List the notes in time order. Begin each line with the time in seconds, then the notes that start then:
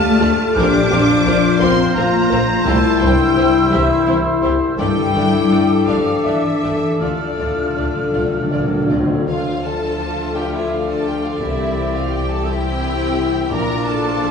Already playing: D2 A2 D3 A3 D4 F4 G4 A4 F5 A5 F6
0.03 D5
0.19 D2 A3 F4 A4 D5
0.40 F4
0.55 A#1 A#2 C4 D4 F4 G4 A#4 C5 D6
0.75 F3
0.90 A#1 F2 C4 F4 A#4 C5
1.09 F4
1.25 A#1 C4 F4 A#4 C5
1.43 C5
1.59 A#1 C4 F4 A#4 C5 F5 C6
1.80 A#5
1.95 A#1 A#3 C4 F4 A#4 C5 F5 A#5
2.14 C5
2.30 A#1 C4 F4 A#4 C5
2.65 C2 C3 A3 C4 E4 G4 C5 A5 E6
2.84 G3
3.00 C2 G2 G3 C4 E4 G4 C5 G5
3.18 E4
3.35 C2 C4 E4 G4 C5
3.54 C5
3.70 C2 E3 C4 E4 G4 C5 E5
3.89 G5
4.06 C2 C4 E4 G4 C5 E5
4.24 C5
4.42 C2 C4 E4 G4 C5
4.61 E4
4.78 G1 G2 G3 A3 D4 E4 G4 A4 D5 G5 D6
4.96 D3
5.14 G1 D3 A3 D4 G4 D5
5.33 D4
5.51 G1 A3 D4 G4 D5
5.70 A4
5.87 G1 F3 A3 D4 G4 D5 F5
6.07 G5
6.25 G1 E3 A3 D4 G4 D5 E5
6.63 G1 A3 D4 G4 D5
6.82 D4
7.00 D2 D3 A3 D4 F4 D5 F6
7.09 D3
7.17 D3 A3
7.24 D3
7.33 D3
7.38 D2 A2 D3 A3 D4 F4 D5
7.49 D3
7.56 D3 F4
7.64 D3
7.73 D2 D3 D4 D5
7.77 D3 A3 D4 F4
7.89 D3
7.95 D3 D5
8.04 D3
8.12 D2 D3 A3 F4 D5 F5
8.20 D3
8.27 D3
8.32 D3 A5
8.43 D3
8.51 D2 D3 A#3 F4 D5 F5
8.59 D3
8.68 D3 D5
8.75 D3
8.84 D3
8.89 D2 D3 C4 F4 A4 D5
9.00 D3
9.08 D3 F4
9.15 D3
9.27 D2 D3 F3 A3 D4 F4 F5
9.63 F4 A4 A5
10.00 D4
10.34 D4 F4 G4 A4 D5 G5
10.52 E4 E5
10.70 F4 G4 F5
10.88 A4 A5
11.05 G4 A4 G5
11.23 F4 F5
11.39 C2 C3 E3 C4 E4 G4 E5
11.76 E4
11.93 F4 F5
12.10 C4 G4 G5
12.28 A4 A5
12.44 C4 E4 G4 E5 G5
12.82 D4
13.17 E4
13.50 A#1 A#2 F3 D4 F4 A#4 D5 A#5
13.86 D4 A4 A5
14.22 F3